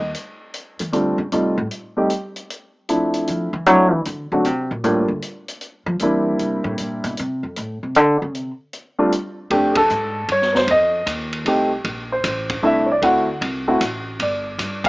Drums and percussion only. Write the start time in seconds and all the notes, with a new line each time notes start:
0.15 closed hi-hat
0.54 closed hi-hat
0.79 closed hi-hat
0.93 closed hi-hat
1.32 closed hi-hat
1.71 closed hi-hat
2.10 closed hi-hat
2.36 closed hi-hat
2.50 closed hi-hat
2.89 closed hi-hat
3.14 closed hi-hat
3.28 closed hi-hat
3.66 closed hi-hat
4.05 closed hi-hat
4.45 closed hi-hat
4.84 closed hi-hat
5.22 closed hi-hat
5.48 closed hi-hat
5.61 closed hi-hat
5.99 closed hi-hat
6.39 closed hi-hat
6.78 closed hi-hat
7.04 closed hi-hat
7.17 closed hi-hat
7.56 closed hi-hat
7.95 closed hi-hat
8.35 closed hi-hat
8.73 closed hi-hat
9.12 closed hi-hat
9.51 kick, ride
9.75 kick, ride
9.90 hi-hat pedal
10.29 kick, ride
10.42 snare
10.55 snare
10.68 kick, ride
11.07 kick, hi-hat pedal, ride
11.33 ride
11.46 kick, ride
11.85 kick, ride
12.24 kick, hi-hat pedal, ride
12.50 kick, ride
12.63 kick
13.02 kick, ride
13.41 kick, ride
13.81 kick, hi-hat pedal, ride
14.20 kick, ride
14.59 kick, hi-hat pedal, ride
14.84 kick, ride